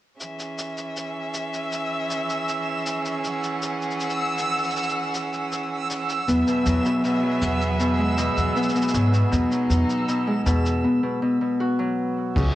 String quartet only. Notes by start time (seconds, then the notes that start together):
0.20 E3 C#4 G#4 E5
3.24 F#5
6.28 F#3 B3 G#4 E5
9.32 D#4
12.36 E3 C#4 G#4 E5